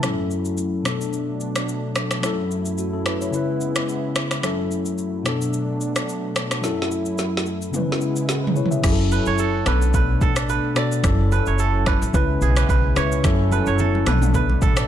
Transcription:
Already playing: analog synth pad E4
0.02 analog synth pad F#2 F#3 A3, tine electric piano F#3 C#4 E4 A4, finger snap, cross-stick, shaker
0.31 shaker
0.45 shaker
0.57 shaker
0.83 tine electric piano B2 B3 D4, analog synth pad B2 F#3 D4, finger snap, cross-stick, shaker
0.88 tine electric piano A4
1.01 shaker
1.13 shaker
1.40 shaker
1.56 finger snap, cross-stick, shaker
1.69 shaker
1.95 finger snap, cross-stick, shaker
2.11 finger snap, cross-stick, shaker
2.21 analog synth pad F#2 E4, tine electric piano F#3 C#4 E4, finger snap, cross-stick, shaker
2.26 tine electric piano A4
2.51 shaker
2.65 shaker
2.78 tine electric piano A3 F#4, shaker
2.93 tine electric piano C#4 A4
3.06 tine electric piano B4, finger snap, cross-stick, shaker
3.21 tine electric piano E4 C#5, shaker
3.31 tine electric piano C#3 C#4 E4, analog synth pad C#3 G#3 B3, shaker
3.36 tine electric piano B4
3.61 shaker
3.76 finger snap, cross-stick, shaker
3.89 shaker
4.16 finger snap, cross-stick, shaker
4.31 finger snap, cross-stick, shaker
4.42 analog synth pad F#2 F#3 A3, tine electric piano F#3 C#4 E4 A4, finger snap, cross-stick, shaker
4.71 shaker
4.86 shaker
4.98 shaker
5.23 tine electric piano B2 B3 D4, analog synth pad B2 D4, finger snap, cross-stick, shaker
5.28 tine electric piano A4
5.41 shaker
5.53 shaker
5.81 shaker
5.96 finger snap, cross-stick, shaker
6.09 shaker
6.36 finger snap, cross-stick, shaker
6.51 finger snap, cross-stick, shaker
6.61 analog synth pad F#2 E4, tine electric piano F#3 C#4 E4, snare, shaker
6.66 tine electric piano A4
6.82 snare
6.91 shaker
7.06 shaker
7.18 snare, shaker
7.37 snare
7.46 shaker
7.62 shaker
7.71 tine electric piano C#3 C#4 E4, analog synth pad C#3 G#3 B3 E4, mid tom, shaker
7.76 tine electric piano B4
7.92 snare
8.01 shaker
8.16 shaker
8.29 tine electric piano B3 G#4, snare, shaker
8.44 tine electric piano B4, floor tom
8.56 tine electric piano E4 C#5, shaker
8.65 floor tom
8.71 tine electric piano G#4 E5, shaker
8.82 upright bass F#1, tine electric piano F#3 C#4 E4 G#4, analog synth pad F#3 C#4 E4 A4, finger snap, kick, cross-stick, crash, shaker
8.91 tine electric piano A4
9.11 kora B4, shaker
9.26 upright bass F#1, kora C#5, shaker
9.38 kora A4, shaker
9.65 upright bass B1, tine electric piano B2 B3 D4 A4, analog synth pad A3 B3 D4, kora B4, finger snap, cross-stick, shaker
9.82 shaker
9.94 kora B4, kick, shaker
10.21 upright bass A1, kora A4, kick, shaker
10.36 finger snap, cross-stick, shaker
10.49 kora B4, shaker
10.75 tine electric piano B2 B3 D4 A4, kora D5, finger snap, cross-stick, shaker
10.92 shaker
11.03 upright bass F#1, tine electric piano F#3 C#4 E4 A4, analog synth pad F#3 C#4 E4 A4, finger snap, kick, cross-stick, shaker
11.32 kora B4, shaker
11.46 upright bass F#1, kora C#5, shaker
11.59 kora A4, shaker
11.86 kora B4, finger snap, kick, cross-stick, shaker
12.02 upright bass A1, shaker
12.13 upright bass C#2, tine electric piano C#3 C#4 E4 B4, analog synth pad C#3 G#3 B3, kora B4, kick, shaker
12.41 upright bass B1, kora G#4, shaker
12.56 kora B4, finger snap, cross-stick, shaker
12.69 upright bass B1, kora B4, kick, shaker
12.95 upright bass C#2, tine electric piano C#3 C#4 E4 B4, kora C#5, finger snap, cross-stick, shaker
13.12 shaker
13.23 upright bass F#1, tine electric piano F#3 C#4 E4 A4, analog synth pad F#3 C#4 A4, finger snap, kick, cross-stick, low conga, shaker
13.51 kora B4, high conga, shaker
13.66 upright bass F#1, kora C#5, shaker
13.79 kora A4, low conga, shaker
13.95 high conga
14.05 upright bass B1, tine electric piano B2 B3 D4 A4, analog synth pad A3 B3 D4, kora B4, finger snap, cross-stick, mid tom, shaker
14.22 mid tom, shaker
14.34 kora B4, kick, low conga, shaker
14.50 high conga
14.62 upright bass A1, kora A4, kick, high conga, shaker
14.77 finger snap, cross-stick, shaker

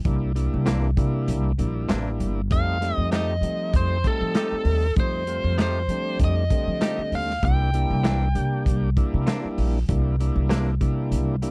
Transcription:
0.05 upright bass C2, tonewheel organ G3 A#3 D4 E4, kick, closed hi-hat
0.35 tonewheel organ G3 A#3 D4 E4, closed hi-hat
0.54 upright bass C2
0.66 clean electric guitar C3 E3 A#3 D4, snare, closed hi-hat
0.97 upright bass C3, tonewheel organ G3 A#3 D4 E4, kick, closed hi-hat
1.28 upright bass C2, closed hi-hat
1.58 upright bass A#1, tonewheel organ G3 A#3 D4 E4, closed hi-hat
1.89 upright bass A1, clean electric guitar C3 E3 A#3 D4, snare, closed hi-hat
2.20 upright bass G1, closed hi-hat
2.51 upright bass F2, tonewheel organ G3 A3 C4 D#4, lead electric guitar F5, kick, closed hi-hat
2.81 tonewheel organ G3 A3 C4 D#4, snare, closed hi-hat
2.95 upright bass F2, lead electric guitar D#5
3.12 clean electric guitar F3 A3 D#4 G4, lead electric guitar D#5, snare, closed hi-hat
3.41 upright bass F3, tonewheel organ G3 A3 C4 D#4, closed hi-hat
3.73 upright bass F2, lead electric guitar C5, kick, closed hi-hat
4.04 tonewheel organ G3 A3 C4 D#4, lead electric guitar A4, kick, closed hi-hat
4.21 upright bass F3
4.35 clean electric guitar F3 A3 D#4 G4, snare, closed hi-hat
4.52 muted upright bass stroke
4.65 upright bass D#2, open hi-hat
4.96 upright bass F2, tonewheel organ G3 A3 C4 D#4, lead electric guitar C5, kick, closed hi-hat
5.27 tonewheel organ G3 A3 C4 F4, closed hi-hat
5.44 upright bass F2
5.58 clean electric guitar F3 A3 D#4 G4, lead electric guitar C5, snare, closed hi-hat
5.88 upright bass F3, tonewheel organ G3 A3 C4 D4, closed hi-hat
6.19 upright bass F2, kick, closed hi-hat
6.24 lead electric guitar D#5
6.50 tonewheel organ D3 G3 A3 C4, kick, closed hi-hat
6.67 upright bass F3
6.81 clean electric guitar F3 A3 D#4 G4, snare, closed hi-hat
6.98 muted upright bass stroke
7.12 upright bass D#2, lead electric guitar F5, open hi-hat
7.30 snare
7.43 upright bass C2, tonewheel organ G3 A#3 D4 E4, lead electric guitar G5, kick, closed hi-hat
7.73 tonewheel organ G3 A#3 D4 E4, closed hi-hat
7.91 upright bass C2
8.04 clean electric guitar C3 E3 A#3 D4, snare, closed hi-hat
8.35 upright bass C3, tonewheel organ G3 A#3 D4 G4, closed hi-hat
8.66 upright bass C2, kick, closed hi-hat
8.97 tonewheel organ G3 A#3 D4 E4, kick, closed hi-hat
9.14 upright bass C3
9.27 clean electric guitar C3 E3 A#3 D4, snare, closed hi-hat
9.45 muted upright bass stroke
9.58 upright bass A#1, open hi-hat
9.88 upright bass C2, tonewheel organ G3 A#3 D4 E4, kick, closed hi-hat
10.20 tonewheel organ G3 A#3 D4 E4, closed hi-hat
10.36 upright bass C2
10.49 clean electric guitar C3 E3 A#3 D4, snare, closed hi-hat
10.81 upright bass C3, tonewheel organ G3 A#3 D4 E4, kick, closed hi-hat
11.11 upright bass C2, closed hi-hat
11.42 tonewheel organ G3 A#3 D4 E4, closed hi-hat

